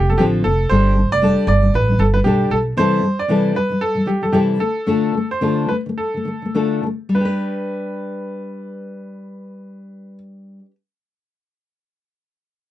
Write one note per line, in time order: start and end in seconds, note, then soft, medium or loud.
0.00 0.15 F1 medium
0.00 0.10 C4 medium
0.10 0.18 D3 soft
0.10 0.18 F3 soft
0.10 0.18 C4 soft
0.10 0.20 A4 medium
0.18 0.40 A1 medium
0.18 0.45 D3 medium
0.18 0.43 F3 medium
0.18 0.45 C4 medium
0.18 0.45 F4 medium
0.18 0.24 G4 medium
0.18 0.46 A4 medium
0.18 0.45 C5 medium
0.44 0.66 F1 medium
0.44 0.67 D3 medium
0.44 0.66 F3 soft
0.44 0.67 C4 medium
0.44 0.68 A4 medium
0.69 1.04 G1 medium
0.69 0.95 G3 medium
0.69 0.96 D4 medium
0.69 0.97 G4 medium
0.69 0.97 A4 medium
0.69 1.08 C5 medium
0.96 1.18 G3 medium
0.96 1.19 D4 medium
1.12 1.33 F1 medium
1.12 1.47 D5 medium
1.22 1.46 G3 medium
1.22 1.48 D4 medium
1.22 1.48 G4 medium
1.22 1.48 A4 medium
1.47 1.68 G1 loud
1.47 1.61 G3 medium
1.47 1.64 D4 medium
1.47 1.72 D5 medium
1.63 1.82 G3 soft
1.63 1.84 D4 medium
1.74 1.95 A1 medium
1.74 2.01 B4 medium
1.88 1.97 G3 soft
1.88 2.00 D4 soft
1.99 2.20 G1 medium
1.99 2.13 G3 medium
1.99 2.15 D4 medium
1.99 2.05 A4 medium
2.14 2.23 G3 soft
2.14 2.25 D4 soft
2.14 2.18 B4 medium
2.24 2.46 B1 medium
2.24 2.49 G3 medium
2.24 2.51 D4 medium
2.24 2.51 G4 medium
2.24 2.51 A4 medium
2.50 2.71 B1 medium
2.50 2.72 G3 soft
2.50 2.74 D4 medium
2.50 2.57 A4 medium
2.77 3.01 C3 medium
2.77 3.02 E3 medium
2.77 3.02 G3 medium
2.77 3.03 C4 medium
2.77 3.03 E4 medium
2.77 3.03 A4 medium
2.77 3.19 C5 medium
3.02 3.24 C3 medium
3.02 3.25 E3 medium
3.02 3.25 G3 medium
3.19 3.56 D5 medium
3.28 3.54 C3 medium
3.28 3.54 E3 medium
3.28 3.54 G3 medium
3.28 3.55 C4 medium
3.28 3.55 E4 medium
3.28 3.55 A4 medium
3.55 3.68 C3 soft
3.55 3.70 E3 medium
3.55 3.71 G3 medium
3.55 3.82 B4 medium
3.69 3.89 C3 soft
3.69 3.90 E3 soft
3.69 3.91 G3 soft
3.81 4.07 A4 medium
3.95 4.04 C3 soft
3.95 4.06 E3 soft
3.95 4.07 G3 soft
4.06 4.20 C3 soft
4.06 4.22 E3 medium
4.06 4.23 G3 medium
4.06 4.23 G4 medium
4.22 4.31 C3 soft
4.22 4.32 E3 soft
4.22 4.32 G3 soft
4.22 4.33 A4 medium
4.32 4.59 C3 medium
4.32 4.59 E3 medium
4.32 4.59 G3 medium
4.32 4.60 C4 medium
4.32 4.60 E4 medium
4.32 4.39 G4 medium
4.32 4.60 A4 medium
4.59 4.82 D3 medium
4.59 4.83 A3 medium
4.59 5.26 A4 medium
4.87 5.13 D3 medium
4.87 5.14 A3 medium
4.87 5.14 D4 medium
4.87 5.14 F4 medium
4.87 5.14 A4 medium
5.14 5.37 D3 soft
5.14 5.38 A3 medium
5.31 5.70 C5 medium
5.41 5.67 D3 medium
5.41 5.69 A3 medium
5.41 5.69 D4 medium
5.41 5.69 F4 medium
5.41 5.70 A4 medium
5.68 5.85 D3 medium
5.68 5.87 A3 medium
5.68 5.75 B4 medium
5.86 6.07 D3 soft
5.86 6.09 A3 soft
5.98 6.80 A4 medium
6.14 6.24 D3 soft
6.14 6.27 A3 soft
6.25 6.41 D3 soft
6.25 6.44 A3 medium
6.42 6.53 D3 soft
6.42 6.54 A3 soft
6.54 6.82 D3 medium
6.54 6.84 A3 medium
6.54 6.84 D4 medium
6.54 6.85 F4 medium
6.54 6.85 A4 medium
6.83 7.09 D3 medium
6.83 7.09 A3 medium
7.09 10.59 G3 medium
7.15 10.65 D4 medium
7.15 10.15 B4 medium
7.21 10.71 G4 medium
7.25 10.75 B4 medium